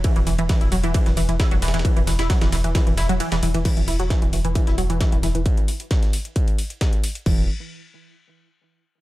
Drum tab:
CC |--------------------------------|--------------------------------|x-------------------------------|--------------------------------|
RD |x---x---x---x---x---x-x-x---xxxx|x---x-x-x-x-x---x---x---x-x---x-|x---x---x---x---x---x-x-x---x---|x---x---x---x---x---x---x---x---|
HH |x-x-o-x-x-x-o-x-x-x-o-x-x-x-o-x-|x-x-o-x-x-x-o-x-x-x-o-x-x-x-o-x-|x-x-o-x-x-x-o-x-x-x-o-x-x-x-o-x-|x-x-o-x-x-x-o-x-x-x-o-x-x-x-o-x-|
SD |--------o---------o-----o---oooo|----o-o-o-o-o---o---o-----o-----|--------o---------o-----o---o---|--------o-o-------------o-------|
BD |o-------o-------o-------o-------|o-------o-------o---------------|o-------o-------o-------o-------|o-------o-------o-------o-------|

CC |x-------------------------------|
RD |--------------------------------|
HH |--------------------------------|
SD |--------------------------------|
BD |o-------------------------------|